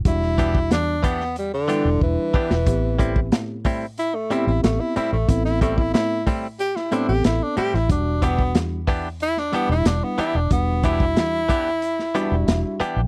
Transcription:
<<
  \new Staff \with { instrumentName = "Tenor saxophone" } { \time 4/4 \key e \minor \tempo 4 = 92 e'4 d'8 b8 g16 d8. e4~ | e4 r4 e'16 a16 e'16 e'16 a16 e'16 e'16 a16 | e'16 e'16 a16 e'16 e'8 r8 g'16 e'16 d'16 g'16 e'16 d'16 g'16 e'16 | d'8 b8 r4 e'16 d'16 b16 e'16 d'16 b16 e'16 d'16 |
b8 e'2. r8 | }
  \new Staff \with { instrumentName = "Tine electric piano" } { \time 4/4 \key e \minor << { r1 | r1 | r1 | r1 |
r2 r8 d''8 e''8 g''8 | } \\ { <g d' fis'>4. r4 <g d' e'>4 r8 | <b c' g'>4. r4 <b c' g'>4 r8 | <b c' a'>4. r4 <b c' a'>4 r8 | <g d' fis'>4. r4 <g d' e'>4 r8 |
<g d' fis'>4. r4 <g d' fis'>4 r8 | } >> }
  \new Staff \with { instrumentName = "Clean electric guitar" } { \time 4/4 \key e \minor r8 <e b d' g'>8 r8 <e b d' g'>8 r8 <e b d' g'>8 r8 <e b d' g'>8 | r8 <a, g c' e'>8 r8 <a, g c' e'>8 r8 <a, g c' e'>8 r8 <a, g c' e'>8 | r8 <a, g c' e'>8 r8 <a, g c' e'>8 r8 <a, g c' e'>8 r8 <a, g c' e'>8 | r8 <e b d' g'>8 r8 <e b d' g'>8 r8 <e b d' g'>8 r8 <e b d' g'>8 |
r8 <e b d' g'>8 r8 <e b d' g'>8 r8 <e b d' g'>8 r8 <e b d' g'>8 | }
  \new Staff \with { instrumentName = "Fingered electric bass" } { \clef bass \time 4/4 \key e \minor e,,4 e,4.~ e,16 e,,16 e,,16 r8 e,,16 | a,,4 a,4.~ a,16 a,,16 a,,16 r8 a,,16 | a,,4 a,4.~ a,16 a,,16 a,,16 r8 a,,16 | e,,4 e,4.~ e,16 e,,16 e,,16 r8 e,,16 |
e,,4 e,4.~ e,16 e,,16 e,,16 r8 b,,16 | }
  \new DrumStaff \with { instrumentName = "Drums" } \drummode { \time 4/4 <hh bd>16 sn16 <hh bd>16 bd16 <hh sn>8 <hh bd>16 sn16 hh8 hh8 bd8 bd16 sn16 | <hh bd>8 <hh bd>16 bd16 <hh sn>8 <hho bd>8 hh8 hh8 <hh sn>8 hh8 | <hh bd>16 sn16 <hh bd>16 bd16 <hh sn>8 <hho bd>8 hh16 sn16 hh8 <hh sn>8 hh16 sn16 | <hh bd>8 <hh bd>16 bd16 <hh sn>8 <hho bd>8 hh16 sn16 hh8 <hh sn>8 hh8 |
<hh bd>8 <hh bd>16 bd16 <hh sn>8 <hh bd>8 hh16 sn16 hh8 <hh sn>8 hh8 | }
>>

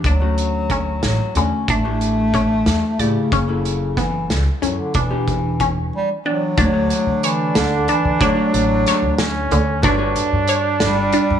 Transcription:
<<
  \new Staff \with { instrumentName = "Hollow-body jazz guitar" } { \time 5/8 \key d \major \tempo 4 = 92 r16 <d a cis' fis'>4. r16 <d a cis' fis'>8 | r16 <a d' e' g'>4. r16 <a e' g' d''>8 | r16 <fis cis' e' a'>4. r16 <fis cis' e' a'>8 | r16 <e b d' g'>4. r16 <e b d' g''>8 |
<d a fis' cis''>16 <d a fis' cis''>4.~ <d a fis' cis''>16 r8 | <d a fis' cis''>16 <d a fis' cis''>4.~ <d a fis' cis''>16 r8 | <g fis' a' b' cis''>16 <g fis' a' b' cis''>4.~ <g fis' a' b' cis''>16 r8 | }
  \new Staff \with { instrumentName = "Flugelhorn" } { \time 5/8 \key d \major r2 r8 | r2 r8 | r2 r8 | r2 r8 |
d'2~ d'8~ | d'4. cis'4 | d'2~ d'8 | }
  \new Staff \with { instrumentName = "Synth arpeggio sound" } { \time 5/8 \key d \major d'4 cis'4 d8 | d'4 cis'4 d''8 | cis'4 b4 cis'8 | d'4 cis'4 d'8 |
d'4 cis''4 d'8 | d'4 cis''4 d8 | d'4 cis''4 d'8 | }
  \new Staff \with { instrumentName = "Bass clarinet" } { \clef bass \time 5/8 \key d \major fis4. fis8 cis'8 | a2 cis8~ | cis4 e8 r8 fis16 d16 | e4. g8 fis8~ |
fis4 e8 d8 e8 | fis2 r8 | r4. g4 | }
  \new Staff \with { instrumentName = "Upright bass" } { \clef bass \time 5/8 \key d \major d,4. a,,16 r16 e,16 r16 | a,,4. e,16 r16 a,16 r16 | fis,,4. cis,16 r16 fis,16 r16 | e,,4. r4 |
d,8 r16 d8. d,8 r16 d16~ | d16 r16 a,,8 r16 d,8. d,8 | g,,8 r16 g,8. g,,8 r16 g,16 | }
  \new DrumStaff \with { instrumentName = "Drums" } \drummode { \time 5/8 <hh bd>8 hh8 <hh bd>8 <hh sn>8 hh8 | <hh bd>8 hh8 <hh bd>8 <hh sn>8 hh8 | <hh bd>8 hh8 <hh bd sn>8 <hh sn>8 hh8 | <hh bd>8 <hh bd>8 <hh bd>8 r4 |
<hh bd>8 hh8 hh8 <hh sn>8 hh8 | <hh bd>8 hh8 <hh sn>8 <hh sn>8 hh8 | <hh bd>8 hh8 hh8 <hh sn>8 hh8 | }
>>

